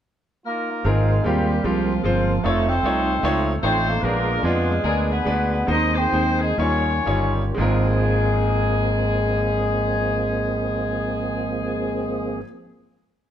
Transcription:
0.46 bass clarinet A#3, horn section D#4 F4 A#4
0.71 bass clarinet A#3
0.84 fingered electric bass G#1, grand piano G#2 G#3 C4 F4 A#4, bass clarinet G#3, tonewheel organ A#3 C4 F4 A#4, horn section C4 F4 G#4
1.24 fingered electric bass D#2, bass clarinet G3, grand piano G#3 C4 F4 G4, horn section A#3 C4 G4
1.64 fingered electric bass C2, bass clarinet F3, grand piano G#3 C4 F4 G4, horn section A#3 C4 F4
2.03 fingered electric bass G1, bass clarinet F3, grand piano G#3 C4 F4 C5, horn section A#3 C4 F4
2.43 fingered electric bass F1, tonewheel organ F3 C4 D#4 A4, grand piano A3 D#4 F4 C#5, bass clarinet A3, horn section C4 D#4 A4
2.68 bass clarinet C4, horn section D#4 A4 C5
2.83 fingered electric bass C2, grand piano A3 D#4 F4 C#5
3.23 fingered electric bass C#2, grand piano A3 D#4 F4 C#5
3.62 fingered electric bass A1, grand piano A3 D#4 F4 C#5, bass clarinet C4, horn section D#4 A4 C5
3.88 bass clarinet A#3
4.02 fingered electric bass A#1, grand piano A#2 G#3 B3 D4 A#4, tonewheel organ G#3 D4 G#4, horn section D4 F4 A#4
4.43 fingered electric bass F2, grand piano G#3 B3 D4 F4, bass clarinet G#3, horn section B3 D4 G#4
4.69 bass clarinet G#3
4.84 fingered electric bass D2, grand piano G#3 B3 D4 A#4, horn section B3 D4 G#4
5.10 bass clarinet B3, horn section D4 G#4 B4
5.25 fingered electric bass D2, grand piano G#3 B3 D4 B4
5.51 bass clarinet B3, horn section B4
5.67 fingered electric bass D#2, grand piano D#3 G#3 C4 D#4 C5, tonewheel organ D#3 G#3 A#3 G#4, horn section G#4 C5 D#5
5.71 tonewheel organ C4, bass clarinet D#4
5.94 bass clarinet C4, horn section D#4 G#4 C5
6.12 fingered electric bass D#2, grand piano G#3 C4 D#4 C5
6.39 bass clarinet G#3, horn section G#4
6.58 fingered electric bass D#2, tonewheel organ D#3 G3 C#4 F4, grand piano D#3 G3 D#4 F4 C#5, horn section F4 G4 C#5
6.62 bass clarinet C#4
7.06 fingered electric bass G1, grand piano G3 D#4 F4 C#5
7.55 grand piano G#1 G#3 C4, fingered electric bass G#1, tonewheel organ F3 A#3 C4 G#4, bass clarinet G#3, horn section G#4
7.59 grand piano F4 A#4

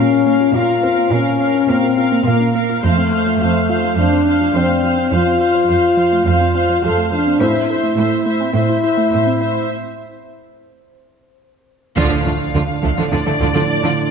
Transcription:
Already playing: cello section A#2, felt piano G3 G4, french horn section C#4, viola section A#4 F5
0.12 synth pluck C#4
0.25 synth pluck A#3, viola section A#4 F5
0.40 synth pluck F4
0.54 cello section A#2, synth pluck A#3, french horn section F4, viola section A#4 F5
0.70 synth pluck F4
0.82 felt piano C4 C5, viola section A#4 F5, synth pluck A#4
0.98 synth pluck A#3
1.11 cello section A#2, french horn section C#4, viola section A#4 F5, synth pluck A#4
1.40 synth pluck A#3, viola section A#4 F5
1.55 synth pluck C#4
1.69 cello section A#2, synth pluck A#3, french horn section C4, viola section A#4 F5
1.84 synth pluck F4
1.97 synth pluck F4, viola section A#4 F5
2.12 synth pluck A#3
2.25 cello section A#2, french horn section A#3, viola section A#4 F5
2.41 synth pluck C#4
2.54 synth pluck A#3, viola section A#4 F5
2.69 synth pluck F4
2.83 cello section F2, synth pluck F3, french horn section A3, viola section C5 F5
2.97 synth pluck C4
3.11 synth pluck F4, viola section C5 F5
3.26 synth pluck F3
3.40 cello section F2, synth pluck F4, viola section C5 F5
3.68 synth pluck F3, felt piano F4 F5, viola section C5 F5
3.84 synth pluck A3
3.97 cello section F2, synth pluck F3, french horn section D4, viola section C5 F5
4.13 synth pluck C4
4.26 synth pluck C4, viola section C5 F5
4.41 synth pluck F3
4.54 cello section F2, french horn section C4, viola section C5 F5, felt piano D5
4.69 synth pluck A3
4.83 synth pluck F3, viola section C5 F5
4.98 synth pluck C4
5.11 cello section F2, synth pluck F3, french horn section F4, viola section C5 F5
5.27 synth pluck C4
5.40 synth pluck F4, viola section C5 F5
5.55 synth pluck F3
5.69 cello section F2, viola section C5 F5
5.97 synth pluck F3, viola section C5 F5
6.12 synth pluck A3
6.25 cello section F2, synth pluck F3, french horn section F4, viola section C5 F5
6.40 synth pluck C4
6.54 synth pluck C4, viola section C5 F5
6.69 synth pluck F3
6.83 cello section F2, french horn section A4, viola section C5 F5
6.97 synth pluck A3
7.12 synth pluck F3, french horn section D4, viola section C5 F5
7.26 synth pluck C4
7.40 cello section A2, synth pluck A3, felt piano C4 C5, french horn section E4, viola section C5 E5
7.55 synth pluck E4
7.69 synth pluck A4, viola section C5 E5
7.84 synth pluck A3
7.97 cello section A2, synth pluck A4, viola section C5 E5
8.26 synth pluck A3, viola section C5 E5
8.41 synth pluck C4
8.54 cello section A2, synth pluck A3, french horn section E4, viola section C5 E5
8.69 synth pluck E4
8.83 synth pluck E4, viola section C5 E5
8.98 synth pluck A3
9.11 cello section A2, viola section C5 E5
9.27 synth pluck C4
9.39 synth pluck A3, viola section C5 E5
9.55 synth pluck E4
11.96 double bass section D2, trombone section A2 D4, cello section D3, synth pluck D3, viola section F3 A3, violin section D4 F4 F5, felt piano A4, taiko
12.25 double bass section D2, cello section D3, viola section F3 A3, synth pluck F3, violin section A3 D4
12.54 double bass section D2, cello section D3, synth pluck D3, viola section F3 A3, violin section D4 F4
12.83 double bass section D2, cello section D3, viola section F3 A3, synth pluck F3, violin section A3 D4, taiko
12.97 cello section D3, synth pluck D3, viola section F3 A3, violin section D4 F4
13.11 double bass section D2, cello section D3, viola section F3 A3, synth pluck D4, violin section D4 F4 D5
13.26 cello section D3, viola section F3 A3, violin section A3 D4, synth pluck D4
13.39 double bass section D2, cello section D3, synth pluck D3, viola section F3 A3, violin section D4 F4
13.54 cello section D3, viola section F3 A3, synth pluck F3, violin section D4 F4
13.83 cello section D3, synth pluck D3, viola section F3 A3, violin section D4 F4

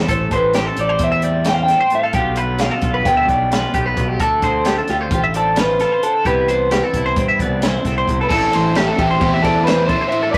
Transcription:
Already playing: clean electric guitar G3 E4
0.08 fingered electric bass A1, clean electric guitar A2 A4 C5, kick, closed hi-hat
0.31 fingered electric bass A1, clean electric guitar G3 C5, kick, closed hi-hat
0.35 clean electric guitar B4
0.53 clean electric guitar C4 G4 C5, snare, closed hi-hat
0.66 clean electric guitar A4
0.77 fingered electric bass A1, clean electric guitar G4, closed hi-hat
0.81 clean electric guitar D5
0.89 clean electric guitar C5
0.99 fingered electric bass E2, clean electric guitar C4, kick, closed hi-hat
1.04 clean electric guitar E5
1.12 clean electric guitar E5
1.22 clean electric guitar G3 D5, closed hi-hat
1.45 clean electric guitar G4 C5, snare, closed hi-hat
1.49 clean electric guitar G5
1.54 clean electric guitar F5
1.63 clean electric guitar G5
1.68 clean electric guitar C4 A4, snare, closed hi-hat
1.80 clean electric guitar C5
1.90 clean electric guitar A2, closed hi-hat
1.95 clean electric guitar F5
2.04 clean electric guitar A4
2.13 fingered electric bass B1, clean electric guitar B2 D3 G3 G4, kick, closed hi-hat
2.18 clean electric guitar B3 F4
2.36 clean electric guitar G3 B4, closed hi-hat
2.58 clean electric guitar B3 G4 F5, snare, closed hi-hat
2.71 clean electric guitar A4
2.82 fingered electric bass B1, clean electric guitar F4, kick, closed hi-hat
2.94 clean electric guitar B4
3.05 fingered electric bass D2, clean electric guitar B3 G5, kick, snare, closed hi-hat
3.17 clean electric guitar E5
3.28 fingered electric bass B1, clean electric guitar G3 D5, kick, closed hi-hat
3.52 clean electric guitar F4 B4, snare, closed hi-hat
3.74 fingered electric bass B1, clean electric guitar B3 G4, kick, closed hi-hat
3.86 clean electric guitar B4
3.97 fingered electric bass B1, clean electric guitar B2, kick, closed hi-hat
4.09 clean electric guitar G4
4.20 fingered electric bass D2, clean electric guitar D3 A4, kick, closed hi-hat
4.42 fingered electric bass D2, clean electric guitar C4 C5, kick, closed hi-hat
4.65 clean electric guitar F4 G4, snare, closed hi-hat
4.78 clean electric guitar A4
4.88 fingered electric bass D2, clean electric guitar F4 G4, snare, closed hi-hat
5.01 clean electric guitar C5
5.11 fingered electric bass A1, clean electric guitar F4 G4, kick, closed hi-hat
5.24 clean electric guitar E5
5.34 clean electric guitar C4 A4 D5, closed hi-hat
5.56 clean electric guitar F4 B4 C5, snare, closed hi-hat
5.80 clean electric guitar F4 A4, snare, closed hi-hat
5.92 clean electric guitar C5
6.03 clean electric guitar D3 A4, closed hi-hat
6.14 clean electric guitar A4
6.25 fingered electric bass C2, clean electric guitar C3 E3 B3 C4 G4 B4, kick, closed hi-hat
6.30 clean electric guitar E4
6.48 clean electric guitar B3 C5, closed hi-hat
6.71 clean electric guitar C4 G4, snare, closed hi-hat
6.83 clean electric guitar A4
6.94 fingered electric bass C2, clean electric guitar E4, kick, closed hi-hat
7.06 clean electric guitar C5
7.16 fingered electric bass G2, clean electric guitar C4, kick, closed hi-hat
7.28 clean electric guitar E5
7.39 fingered electric bass C2, clean electric guitar B3 D5, kick, closed hi-hat
7.62 clean electric guitar E4 C5, snare, closed hi-hat
7.85 fingered electric bass C2, clean electric guitar C4 A4, kick, snare, closed hi-hat
7.98 clean electric guitar C5
8.08 fingered electric bass C2, clean electric guitar C3, kick, closed hi-hat
8.21 clean electric guitar A4 B4
8.29 fingered electric bass A1, overdriven electric guitar A2 E3 A3 C4 E4, clean electric guitar A4, kick, crash
8.52 fingered electric bass A1, overdriven electric guitar A3 C4 E4, clean electric guitar C5, snare, ride
8.75 overdriven electric guitar A2 E3 A3 C4 E4, clean electric guitar G4, snare, ride
8.88 clean electric guitar A4
8.97 fingered electric bass A1, overdriven electric guitar A3 C4 E4, clean electric guitar G4, kick, ride
9.11 clean electric guitar C5
9.20 fingered electric bass E2, overdriven electric guitar E3 A3 C4 E4, clean electric guitar G4, kick, ride
9.34 clean electric guitar E5
9.42 overdriven electric guitar A2 E3 A3 C4 E4, clean electric guitar A4 D5, kick, snare, ride
9.64 overdriven electric guitar E3 A3, clean electric guitar B4 C5, ride
9.68 overdriven electric guitar C4 E4, snare
9.86 overdriven electric guitar E4, clean electric guitar A4 C5, kick, ride
9.90 overdriven electric guitar A3 C4
10.01 clean electric guitar C5
10.09 overdriven electric guitar A2 E3, clean electric guitar E5, ride
10.13 overdriven electric guitar A3 C4 E4
10.23 clean electric guitar A4
10.31 fingered electric bass B1, overdriven electric guitar B2, clean electric guitar B4 D5, kick, ride

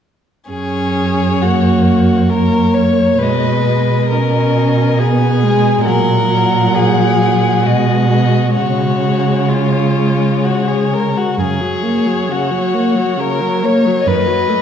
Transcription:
0.50 cello F#2, viola C#4, violin G#4 C#5
1.42 viola A#3, violin F#4
2.30 viola A#3, violin A#4 C#5
2.74 violin C#5
3.18 cello B2, viola G#3, violin B4
3.23 violin D#5
3.67 violin D#5
4.10 viola C#4, violin A#4
4.98 viola B3, violin G#4 G#5
5.43 viola G#3
5.85 cello A#2, viola F#3, violin A#4 F#5
6.29 viola F#3
6.74 violin G#4
7.63 cello B2, viola G#3, violin F#4 D#5
8.13 violin D#5
8.55 cello C#3, viola G#3, violin F#4
8.59 violin C#5
9.48 violin F4
10.44 violin F#4
10.68 violin G#4
10.93 violin A#4
11.17 violin F#4
11.38 cello F#2, viola C#3, violin G#4 C#5
11.61 viola F#3
11.83 viola A#3
12.06 viola F#3
12.29 viola C#3, violin F#4
12.51 viola F#3
12.74 viola A#3
12.95 viola F#3
13.17 viola C#3, violin A#4
13.41 viola F#3
13.63 viola A#3, violin C#5
13.85 viola F#3
14.06 cello F#2, viola D#3, violin B4 D#5
14.27 viola F#3
14.49 viola A3

